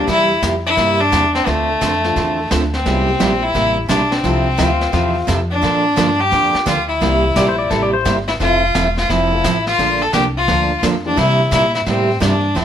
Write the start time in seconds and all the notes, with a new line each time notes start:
0.08 E2 C3 G3 A#3 E4 G4, brush sweep, kick, snare
0.42 F2 C3 G3 A#3 E4 G4, kick, snare, hi-hat pedal
0.67 E4
0.77 G2 C3 G3 A#3 E4 G4, brush sweep, kick, snare
1.00 D4
1.12 E2 C3 G3 A#3 E4 G4, kick, snare, hi-hat pedal
1.35 C4, snare
1.46 D2 D3 A3 C4 F4 A4, brush sweep, kick, snare
1.81 F2 D3 A3 C4 F4 A4, kick, snare, hi-hat pedal
2.04 F3 A3 C4 D4 F4, snare
2.16 E2 D3 A3 C4 F4 A4, brush sweep, kick, snare
2.51 D2 D3 A3 C4 F4 A4, kick, snare, hi-hat pedal
2.74 C4, snare
2.85 C2 C3 G3 G#3 A#3 B3 C#4 E4 F4 G4 G#4, brush sweep, kick, snare
3.08 G3 A#3 C4 E4 G4
3.20 A#1 C3 G3 A#3 E4 G4, kick, snare, hi-hat pedal
3.43 E4
3.54 A1 C3 G3 A#3 E4 G4, brush sweep, kick, snare
3.89 B1 C3 G3 A#3 D4 E4 G4, kick, snare, hi-hat pedal
4.12 C4, snare
4.23 C2 C3 F3 A3 C4 E4 F4 A4, brush sweep, kick, snare
4.57 D2 C3 F3 C4 E4 F4 A4, kick, snare, hi-hat pedal
4.81 snare
4.92 E2 C3 F3 C4 E4 F4 A4, brush sweep, kick, snare
5.27 F2 C3 F3 C4 E4 A4, kick, snare, hi-hat pedal
5.51 D4
5.62 A#2 D3 F3 A#3 D4 A4, brush sweep, kick, snare
5.96 G2 D3 F3 A#3 D4 A4, kick, snare, hi-hat pedal
6.20 G4
6.32 F2 D3 F3 A#3 D4 A4, brush sweep, kick, snare
6.54 muted upright bass stroke, snare
6.66 D2 D3 F3 A#3 D4 F4 A4, kick, snare, hi-hat pedal
6.89 E4
7.01 C2 C3 E3 G3 A#3 C4 E4 G4, brush sweep, kick, snare
7.36 A#1 C3 G3 A#3 E4 G4 D5, kick, snare, hi-hat pedal
7.49 C5
7.58 D5
7.71 A1 C3 G3 A#3 E4 G4 A4, brush sweep, kick, snare
7.83 D5
7.93 C5
8.05 G1 C3 G3 A#3 E4 G4, kick, snare, hi-hat pedal
8.28 E4, snare
8.40 F1 F3 A3 C4 E4 F4 A4, brush sweep, kick, snare
8.75 E1 F3 C4 E4 A4, kick, snare, hi-hat pedal
8.98 F4, snare
9.09 F1 F3 C4 E4 A4, brush sweep, kick, snare
9.32 F3 A3 C4 E4 F4
9.44 A1 F3 C4 E4 A4, kick, snare, hi-hat pedal
9.67 F4, snare
9.78 A#1 D3 F3 A3 A#3 D4 F4 A4, brush sweep, kick, snare
10.02 A4
10.13 C2 D3 F3 A#3 D4 G4 A4, kick, snare, hi-hat pedal
10.37 F4
10.47 D2 D3 F3 A3 A#3 D4 F4 A4, brush sweep, kick, snare
10.83 F2 D3 F3 A#3 D4 A4, kick, snare, hi-hat pedal
11.05 E3 G3 A#3 C4 D4 E4
11.17 C3 G3 A#3 E4 G4, brush sweep, kick, snare
11.51 A#2 C3 G3 A#3 E4 G4, kick, snare, hi-hat pedal
11.75 E4, snare
11.86 A2 C3 G3 A#3 C4 E4 G4, brush sweep, kick, snare
12.20 G2 C3 E3 G3 A#3 C4 D4 E4 G4, kick, snare, hi-hat pedal
12.55 F2 F3 C4 E4 A4, brush sweep, kick, snare